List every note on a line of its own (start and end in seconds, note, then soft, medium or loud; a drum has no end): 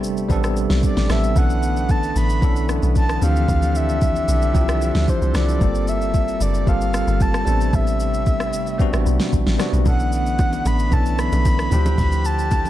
0.00 0.28 G1 loud
0.00 1.34 C3 medium
0.00 0.29 G3 loud
0.00 1.32 G3 medium
0.00 3.18 A3 medium
0.00 0.29 B3 medium
0.00 0.30 C4 medium
0.00 0.31 D4 medium
0.00 0.32 A4 loud
0.00 shaker loud
0.17 shaker soft
0.29 0.67 A1 loud
0.29 0.93 G3 medium
0.29 0.94 B3 medium
0.29 0.94 C4 medium
0.29 0.95 D4 medium
0.29 0.95 A4 loud
0.29 kick loud
0.29 shaker medium
0.44 cross-stick medium
0.44 shaker medium
0.57 shaker medium
0.70 0.82 B1 medium
0.70 snare medium
0.70 shaker medium
0.83 1.12 D5 medium
0.83 kick medium
0.83 shaker medium
0.97 1.09 A1 medium
0.97 snare medium
0.97 shaker medium
1.08 1.34 A1 loud
1.08 1.30 G3 medium
1.08 1.31 B3 medium
1.08 1.31 C4 medium
1.08 1.32 D4 medium
1.08 1.32 A4 medium
1.08 1.39 E5 medium
1.08 cross-stick medium
1.08 snare medium
1.08 shaker medium
1.24 shaker medium
1.35 2.12 B1 loud
1.35 5.57 D3 medium
1.35 2.21 E3 medium
1.35 2.21 B3 medium
1.35 3.20 B3 medium
1.35 2.22 C#4 medium
1.35 2.22 D4 medium
1.35 2.22 A4 medium
1.35 1.92 F#5 loud
1.35 kick loud
1.35 shaker medium
1.50 shaker medium
1.63 shaker medium
1.77 shaker medium
1.89 2.17 A5 loud
1.89 kick loud
1.89 shaker medium
2.03 shaker soft
2.16 2.40 A1 loud
2.16 2.66 B5 loud
2.16 shaker loud
2.29 shaker medium
2.41 2.80 B1 loud
2.41 3.06 E3 medium
2.41 3.06 B3 medium
2.41 3.07 C#4 medium
2.41 3.07 D4 medium
2.41 3.08 A4 medium
2.41 kick loud
2.41 shaker medium
2.56 shaker medium
2.69 cross-stick medium
2.69 shaker medium
2.83 3.19 B1 loud
2.83 shaker medium
2.96 3.21 A5 loud
2.96 kick medium
2.96 shaker medium
3.09 cross-stick medium
3.09 shaker medium
3.20 3.47 D2 loud
3.20 4.08 E3 medium
3.20 4.06 F3 medium
3.20 4.07 C4 medium
3.20 5.59 C4 medium
3.20 4.07 D4 medium
3.20 5.59 D4 medium
3.20 5.59 G4 medium
3.20 4.08 G4 medium
3.20 7.43 A4 medium
3.20 3.78 F5 loud
3.20 shaker loud
3.36 shaker soft
3.49 4.24 D2 loud
3.49 kick loud
3.49 shaker medium
3.62 shaker medium
3.75 5.11 E5 loud
3.75 shaker medium
3.89 shaker medium
4.02 kick loud
4.02 shaker medium
4.16 shaker medium
4.28 4.53 B1 medium
4.28 shaker loud
4.42 shaker medium
4.53 4.92 C2 loud
4.53 5.18 F3 medium
4.53 5.19 C4 medium
4.53 5.19 D4 medium
4.53 5.19 E4 medium
4.53 5.20 G4 loud
4.53 kick loud
4.53 shaker medium
4.69 cross-stick loud
4.69 shaker medium
4.81 shaker medium
4.95 5.07 D2 medium
4.95 snare medium
4.95 shaker medium
5.08 5.37 C5 loud
5.08 kick loud
5.08 shaker medium
5.22 5.34 C2 medium
5.22 shaker medium
5.33 5.59 C2 medium
5.33 5.55 F3 medium
5.33 5.56 C4 medium
5.33 5.56 D4 medium
5.33 5.57 E4 medium
5.33 5.57 A4 medium
5.33 5.90 D5 loud
5.33 cross-stick medium
5.33 snare medium
5.33 shaker medium
5.49 shaker medium
5.59 6.37 G1 loud
5.59 6.45 G3 medium
5.59 9.82 G3 medium
5.59 6.46 A#3 medium
5.59 7.45 A#3 medium
5.59 6.46 C4 medium
5.59 6.47 F4 medium
5.59 6.47 A4 medium
5.59 kick loud
5.59 shaker medium
5.75 shaker medium
5.88 6.43 E5 loud
5.88 shaker medium
6.02 shaker medium
6.14 kick loud
6.14 shaker medium
6.28 shaker soft
6.41 6.65 F#1 loud
6.41 6.70 D5 medium
6.41 shaker loud
6.54 shaker medium
6.66 7.05 G1 loud
6.66 7.31 G3 medium
6.66 7.31 A#3 medium
6.66 7.31 C4 medium
6.66 7.32 F4 medium
6.66 7.32 A4 medium
6.66 7.23 F5 loud
6.66 kick loud
6.66 shaker medium
6.81 shaker medium
6.94 cross-stick medium
6.94 shaker medium
7.08 7.44 G1 loud
7.08 shaker medium
7.20 7.76 A5 loud
7.20 kick medium
7.20 shaker medium
7.34 cross-stick medium
7.34 shaker medium
7.45 7.71 A1 loud
7.45 9.84 C3 medium
7.45 8.31 G3 medium
7.45 11.68 A3 medium
7.45 8.32 B3 medium
7.45 8.32 C4 medium
7.45 8.33 D4 medium
7.45 8.33 A4 medium
7.45 shaker medium
7.61 shaker medium
7.73 8.55 A1 loud
7.73 9.33 E5 loud
7.73 kick loud
7.73 shaker medium
7.87 shaker medium
8.00 shaker medium
8.14 shaker medium
8.26 kick loud
8.26 shaker medium
8.40 cross-stick medium
8.40 shaker soft
8.53 8.78 G1 loud
8.53 shaker loud
8.67 shaker medium
8.78 9.43 G3 medium
8.78 9.43 B3 medium
8.78 9.44 C4 medium
8.78 9.44 D4 medium
8.78 9.45 F#4 loud
8.78 kick loud
8.78 shaker medium
8.93 9.05 A1 medium
8.93 cross-stick loud
8.93 shaker medium
9.06 9.19 B1 loud
9.06 shaker medium
9.20 snare medium
9.20 shaker medium
9.33 9.46 A1 medium
9.33 kick medium
9.33 shaker medium
9.47 9.58 A1 medium
9.47 snare medium
9.47 shaker soft
9.58 9.80 G3 medium
9.58 9.80 B3 medium
9.58 9.81 C4 medium
9.58 9.81 D4 medium
9.58 9.82 F#4 medium
9.58 cross-stick medium
9.58 snare medium
9.58 shaker medium
9.73 9.85 B1 medium
9.73 shaker medium
9.84 10.61 B1 loud
9.84 12.70 D3 medium
9.84 10.70 E3 medium
9.84 10.71 B3 medium
9.84 11.70 B3 medium
9.84 10.71 C#4 medium
9.84 10.72 D4 medium
9.84 10.72 A4 medium
9.84 10.11 F#5 loud
9.84 kick loud
9.84 low conga medium
9.84 shaker medium
10.00 shaker medium
10.12 10.68 F#5 loud
10.12 shaker medium
10.26 shaker medium
10.39 kick loud
10.39 high bongo medium
10.39 shaker medium
10.53 low bongo medium
10.53 shaker medium
10.66 10.90 A1 medium
10.66 10.95 B5 loud
10.66 low bongo medium
10.66 shaker loud
10.79 shaker medium
10.90 11.29 B1 loud
10.90 11.55 E3 medium
10.90 11.56 B3 medium
10.90 11.56 C#4 medium
10.90 11.57 D4 medium
10.90 11.57 A4 medium
10.90 11.21 A5 loud
10.90 kick loud
10.90 low conga medium
10.90 shaker medium
11.06 shaker medium
11.19 11.99 B5 loud
11.19 cross-stick medium
11.19 shaker medium
11.32 11.69 B1 medium
11.32 low bongo medium
11.32 shaker medium
11.45 kick loud
11.45 high bongo medium
11.45 shaker medium
11.59 cross-stick medium
11.59 shaker soft
11.70 11.96 D2 loud
11.70 12.56 F3 medium
11.70 12.57 C4 medium
11.70 12.70 C4 medium
11.70 12.70 D4 medium
11.70 12.57 D4 medium
11.70 12.57 E4 medium
11.70 12.70 G4 medium
11.70 12.58 G4 medium
11.70 low conga medium
11.70 shaker medium
11.86 low bongo medium
11.86 shaker medium
11.98 12.70 D2 loud
11.98 12.27 B5 loud
11.98 kick loud
11.98 low conga medium
11.98 shaker medium
12.12 shaker medium
12.25 12.70 A5 loud
12.25 shaker medium
12.39 shaker medium
12.51 kick loud
12.51 high bongo medium
12.51 shaker medium
12.65 low bongo medium
12.65 shaker soft